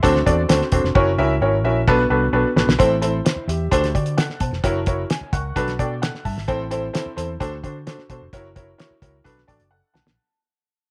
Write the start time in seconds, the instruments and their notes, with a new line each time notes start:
Already playing: upright piano E5 C6
0.03 fingered electric bass D2, upright piano C4 D4 F#4 A4 C5, kick, closed hi-hat
0.16 snare
0.26 fingered electric bass E2, upright piano C4 D4 F#4 A4 D5, kick, closed hi-hat
0.49 fingered electric bass D2, upright piano C4 D4 F#4 A4 C5, snare, closed hi-hat
0.61 snare
0.72 fingered electric bass E1, upright piano C4 D4 F#4 A4 C5, kick, closed hi-hat
0.84 fingered electric bass F1, snare
0.95 fingered electric bass F#1, upright piano C#4 E4 F#4 A#4 C#5, kick
1.18 fingered electric bass C#2, upright piano C#4 E4 F#4 A#4 E5
1.41 fingered electric bass G#1, upright piano C#4 E4 F#4 A#4 C#5
1.64 fingered electric bass A#1, upright piano C#4 E4 F#4 A#4 E5
1.87 fingered electric bass B1, upright piano B3 D4 F#4 A4 B4, kick
2.10 fingered electric bass C2, upright piano B3 D4 F#4 A4 B4
2.33 fingered electric bass B1, upright piano B3 D4 F#4 A4 B4
2.56 fingered electric bass A1, upright piano B3 D4 F#4 A4 B4, snare
2.67 fingered electric bass B1, snare
2.79 fingered electric bass A1, upright piano C4 E4 A4 C5, kick, closed hi-hat
3.02 upright piano C4 E4 A4 C5, closed hi-hat
3.25 upright piano E4 C5, snare, closed hi-hat
3.36 muted fingered electric bass stroke
3.48 fingered electric bass E2, upright piano G4 E5, closed hi-hat
3.71 fingered electric bass D2, upright piano D4 F#4 A4 C5, kick, closed hi-hat
3.84 snare, closed hi-hat
3.95 fingered electric bass D3, upright piano F#4 D5, kick, closed hi-hat
4.06 closed hi-hat
4.17 upright piano A4 F#5, snare, closed hi-hat
4.30 snare
4.40 fingered electric bass B2, upright piano C5 A5, kick, closed hi-hat
4.51 fingered electric bass F1, snare
4.63 fingered electric bass F#1, upright piano E4 F#4 A#4 C#5, kick, closed hi-hat
4.86 upright piano E4 F#4 A#4 C#5, kick, closed hi-hat
5.10 upright piano G#5, snare, closed hi-hat
5.21 muted fingered electric bass stroke
5.33 fingered electric bass C#2, upright piano A#4 F#5 C#6, kick, closed hi-hat
5.56 fingered electric bass B1, upright piano D4 F#4 A4 B4 A5, kick, closed hi-hat
5.68 snare, closed hi-hat
5.79 fingered electric bass B2, upright piano D4 F#4 A4 D5 G5, kick, closed hi-hat
6.02 upright piano A4 F#5, snare, closed hi-hat
6.15 snare
6.25 fingered electric bass G2, upright piano E5 A5, kick, open hi-hat
6.36 fingered electric bass G#1, snare
6.48 fingered electric bass A1, upright piano C4 E4 A4 C5, kick, closed hi-hat
6.71 upright piano C4 E4 A4 C5, closed hi-hat
6.93 upright piano C4 E4 A4 C5, snare, closed hi-hat
7.06 muted fingered electric bass stroke
7.16 fingered electric bass E2, upright piano C4 E4 A4 C5, closed hi-hat
7.40 fingered electric bass D2, upright piano D4 F#4 A4 C5, kick, closed hi-hat
7.63 fingered electric bass D3, upright piano D4 F#4 A4 C5, kick, closed hi-hat
7.87 upright piano D4 F#4 A4 C5, snare, closed hi-hat
7.99 snare
8.10 fingered electric bass B2, upright piano D4 F#4 A4 C5, kick, closed hi-hat
8.21 fingered electric bass F1
8.33 fingered electric bass F#1, upright piano E4 F#4 A#4 C#5, kick, closed hi-hat
8.56 upright piano E4 F#4 A#4 C#5, kick, closed hi-hat
8.78 upright piano E4 F#4 A#4 C#5, snare, closed hi-hat
8.90 muted fingered electric bass stroke
9.02 fingered electric bass C#2, upright piano E4 F#4 A#4 C#5, kick, closed hi-hat
9.24 fingered electric bass B1, upright piano D4 F#4 A4 B4, kick, closed hi-hat
9.38 snare
9.47 fingered electric bass A1, upright piano D4 F#4 A4 D5 A5, kick, closed hi-hat
9.60 fingered electric bass F#1, closed hi-hat
9.71 upright piano A4 F#5
9.94 fingered electric bass B1, upright piano F#5 A5, snare
10.06 fingered electric bass A#1, snare